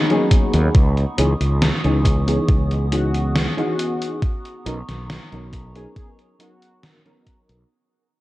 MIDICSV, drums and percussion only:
0, 0, Header, 1, 2, 480
1, 0, Start_track
1, 0, Key_signature, 5, "major"
1, 0, Tempo, 869565
1, 412, Time_signature, 4, 2, 24, 8
1, 4530, End_track
2, 0, Start_track
2, 0, Title_t, "Drums"
2, 55, Note_on_c, 9, 42, 25
2, 110, Note_off_c, 9, 42, 0
2, 171, Note_on_c, 9, 36, 62
2, 171, Note_on_c, 9, 42, 86
2, 226, Note_off_c, 9, 36, 0
2, 226, Note_off_c, 9, 42, 0
2, 294, Note_on_c, 9, 42, 51
2, 349, Note_off_c, 9, 42, 0
2, 411, Note_on_c, 9, 36, 111
2, 411, Note_on_c, 9, 42, 49
2, 466, Note_off_c, 9, 42, 0
2, 467, Note_off_c, 9, 36, 0
2, 536, Note_on_c, 9, 42, 25
2, 591, Note_off_c, 9, 42, 0
2, 652, Note_on_c, 9, 42, 90
2, 707, Note_off_c, 9, 42, 0
2, 777, Note_on_c, 9, 42, 50
2, 832, Note_off_c, 9, 42, 0
2, 893, Note_on_c, 9, 38, 109
2, 893, Note_on_c, 9, 42, 53
2, 948, Note_off_c, 9, 38, 0
2, 948, Note_off_c, 9, 42, 0
2, 1016, Note_on_c, 9, 42, 27
2, 1071, Note_off_c, 9, 42, 0
2, 1132, Note_on_c, 9, 36, 57
2, 1133, Note_on_c, 9, 42, 89
2, 1187, Note_off_c, 9, 36, 0
2, 1188, Note_off_c, 9, 42, 0
2, 1257, Note_on_c, 9, 42, 54
2, 1312, Note_off_c, 9, 42, 0
2, 1371, Note_on_c, 9, 36, 117
2, 1373, Note_on_c, 9, 42, 51
2, 1426, Note_off_c, 9, 36, 0
2, 1428, Note_off_c, 9, 42, 0
2, 1496, Note_on_c, 9, 42, 27
2, 1551, Note_off_c, 9, 42, 0
2, 1612, Note_on_c, 9, 42, 89
2, 1667, Note_off_c, 9, 42, 0
2, 1736, Note_on_c, 9, 42, 52
2, 1791, Note_off_c, 9, 42, 0
2, 1853, Note_on_c, 9, 38, 115
2, 1853, Note_on_c, 9, 42, 53
2, 1909, Note_off_c, 9, 38, 0
2, 1909, Note_off_c, 9, 42, 0
2, 1978, Note_on_c, 9, 42, 27
2, 2033, Note_off_c, 9, 42, 0
2, 2094, Note_on_c, 9, 42, 88
2, 2149, Note_off_c, 9, 42, 0
2, 2218, Note_on_c, 9, 42, 52
2, 2273, Note_off_c, 9, 42, 0
2, 2331, Note_on_c, 9, 36, 115
2, 2334, Note_on_c, 9, 42, 55
2, 2387, Note_off_c, 9, 36, 0
2, 2389, Note_off_c, 9, 42, 0
2, 2458, Note_on_c, 9, 42, 27
2, 2513, Note_off_c, 9, 42, 0
2, 2575, Note_on_c, 9, 42, 100
2, 2630, Note_off_c, 9, 42, 0
2, 2698, Note_on_c, 9, 38, 34
2, 2698, Note_on_c, 9, 42, 52
2, 2753, Note_off_c, 9, 38, 0
2, 2753, Note_off_c, 9, 42, 0
2, 2814, Note_on_c, 9, 38, 111
2, 2814, Note_on_c, 9, 42, 56
2, 2870, Note_off_c, 9, 38, 0
2, 2870, Note_off_c, 9, 42, 0
2, 2938, Note_on_c, 9, 42, 29
2, 2994, Note_off_c, 9, 42, 0
2, 3051, Note_on_c, 9, 36, 57
2, 3054, Note_on_c, 9, 42, 96
2, 3106, Note_off_c, 9, 36, 0
2, 3109, Note_off_c, 9, 42, 0
2, 3177, Note_on_c, 9, 42, 54
2, 3232, Note_off_c, 9, 42, 0
2, 3292, Note_on_c, 9, 36, 118
2, 3293, Note_on_c, 9, 42, 58
2, 3347, Note_off_c, 9, 36, 0
2, 3348, Note_off_c, 9, 42, 0
2, 3416, Note_on_c, 9, 42, 28
2, 3471, Note_off_c, 9, 42, 0
2, 3532, Note_on_c, 9, 42, 95
2, 3587, Note_off_c, 9, 42, 0
2, 3655, Note_on_c, 9, 42, 54
2, 3710, Note_off_c, 9, 42, 0
2, 3772, Note_on_c, 9, 38, 115
2, 3772, Note_on_c, 9, 42, 56
2, 3827, Note_off_c, 9, 38, 0
2, 3827, Note_off_c, 9, 42, 0
2, 3895, Note_on_c, 9, 42, 26
2, 3950, Note_off_c, 9, 42, 0
2, 4011, Note_on_c, 9, 36, 61
2, 4012, Note_on_c, 9, 42, 93
2, 4066, Note_off_c, 9, 36, 0
2, 4067, Note_off_c, 9, 42, 0
2, 4136, Note_on_c, 9, 42, 56
2, 4191, Note_off_c, 9, 42, 0
2, 4530, End_track
0, 0, End_of_file